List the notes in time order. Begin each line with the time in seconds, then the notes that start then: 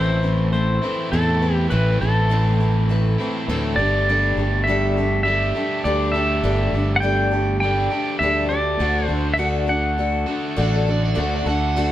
Already playing: A1 A2 E3 A3 C4 E4 B4 C5
0.22 A3 C4 E4 B4
0.53 A3 C4 E4 B4 C5
0.83 A2 E3 A3 C4 E4 B4
1.12 E2 A2 E3 A3 C4 E4 A4 B4
1.42 A3 C4 E4 B4
1.55 G4
1.70 A1 A2 E3 A3 C4 E4 B4
2.01 A1 A3 C4 E4 A4 B4
2.30 A2 E3 A3 C4 E4 B4
2.59 A3 C4 E4 B4
2.89 A3 C4 E4 B4
3.20 A2 E3 A3 C4 E4 B4
3.48 D2 A2 E3 A3 C4 E4 B4
3.76 G1 G3 A3 D4 G4 A4 D5
4.09 G3 D4 G4 A4
4.37 G1 D4 G4 A4
4.64 G3 E5
4.68 D4 G4 A4
4.97 D4 G4 A4
5.23 G3 A3 D4 E5
5.27 G4 A4
5.55 G3 A3 D4 G4 A4
5.84 D2 G3 D4 G4 A4 D5
6.12 G3 A3 D4 G4 A4 E5
6.43 G1 G3 D4 G4 A4
6.73 G1 D4 G4 A4
6.96 F#5
7.02 G3 D4 G4 A4
7.31 D4 G4 A4
7.60 G3 A3 D4 G4 A4 G5
7.91 G3 A3 D4 G4 A4
8.19 D2 G3 D4 E5
8.23 G4 A4
8.49 D4 G4 A4 D5
8.79 D2 D3 A3 D4 F#4 A4
9.06 F#4 A4 C5
9.10 D2 D4
9.34 A3 E5
9.38 D3 D4 F#4 A4 F#5
9.67 D4 F#4 A4 F#5
9.98 A3 D4 F#4 A4
10.26 A3 D4 F#4 A4
10.31 D3
10.56 A1 D3 A3 D4 F#4 A4
10.62 D5
10.76 A4
10.87 D4 F#4 A4 D5
11.05 D5
11.15 D2 D3 A3 D4 F#4 A4
11.20 A4
11.35 D5
11.46 D2 D4 F#4 A4 F#5
11.76 D3 A3 D4 F#4 A4